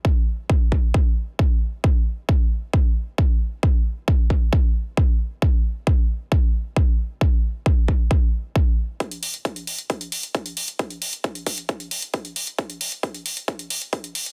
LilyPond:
\new DrumStaff \with { instrumentName = "Drums" } \drummode { \time 4/4 \tempo 4 = 134 bd4 bd8 bd8 bd4 bd4 | bd4 bd4 bd4 bd4 | bd4 bd8 bd8 bd4 bd4 | bd4 bd4 bd4 bd4 |
bd4 bd8 bd8 bd4 bd4 | <hh bd>16 hh16 hho16 hh16 <hh bd>16 hh16 hho16 hh16 <hh bd>16 hh16 hho16 hh16 <hh bd>16 hh16 hho16 hh16 | <hh bd>16 hh16 hho16 hh16 <hh bd>16 hh16 <hho bd>16 hh16 <hh bd>16 hh16 hho16 hh16 <hh bd>16 hh16 hho16 hh16 | <hh bd>16 hh16 hho16 hh16 <hh bd>16 hh16 hho16 hh16 <hh bd>16 hh16 hho16 hh16 <hh bd>16 hh16 hho16 hh16 | }